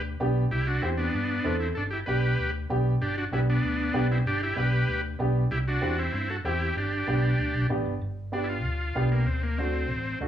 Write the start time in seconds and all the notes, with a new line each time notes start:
Already playing: D2
0.20 B1 B3 D4 G4
0.51 C2 E4 G4
0.67 D4 F#4
0.82 E2 C4 E4 G4
0.97 B3 D4
1.14 G2
1.44 E2 C4 E4 A4
1.60 C4 E4
1.75 G1 D4 A4
1.91 E4 G4
2.06 B1 B3 D4 G4 B4
2.39 D2
2.70 B1 B3 D4 G4
3.01 G1 D4 G4
3.18 D4 F#4
3.32 B1 B3 D4 E4 G4
3.49 B3 D4
3.63 D2
3.93 B1 B3 D4 G4
4.11 C4 E4
4.26 G1 D4 G4
4.43 E4 G4
4.56 B1 B3 D4 G4 B4
4.88 D2
5.19 B1 B3 D4 G4
5.51 C2 E4 G4
5.68 D4 F#4
5.81 E2 C4 E4 G4
5.98 C4 E4
6.13 G2 C4 E4
6.30 F#4 A4
6.44 E2 C4 E4 G4
6.76 G1 D4 G4
7.07 B1 B3 D4 G4
7.38 D2
7.54 B1
7.69 A1 B3 D4 G4
7.85 G1
8.01 G1
8.32 B3 D4 G4
8.44 E4
8.49 F4
8.64 D2
8.95 B1 B3 D4 G4
9.12 A#3
9.27 D2 C4
9.43 A#3
9.58 A3 C4 D4 F#4
9.89 A1
10.20 D2 A3 D4 F#4